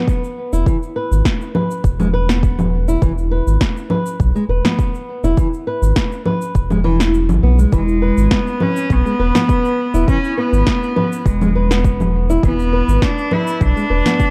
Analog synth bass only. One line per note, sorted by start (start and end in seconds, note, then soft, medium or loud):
0.53 0.63 E1 medium
1.12 1.22 G#1 medium
1.84 2.96 E1 medium
3.02 3.41 E1 loud
3.47 3.57 G#1 medium
4.20 4.32 B1 loud
4.49 4.61 E1 loud
5.24 5.34 E1 loud
5.82 5.93 G#1 medium
6.55 7.31 E1 medium
7.29 7.40 G#1 medium
7.43 7.66 B1 loud
7.73 8.11 E1 loud
8.17 8.28 G#1 medium
8.90 9.02 B1 loud
9.20 9.31 E1 loud
9.94 10.04 E1 loud
10.53 10.63 G#1 medium
11.26 12.38 E1 medium
12.43 12.82 E1 loud
12.88 12.99 G#1 medium
13.61 13.73 B1 loud
13.90 14.02 E1 loud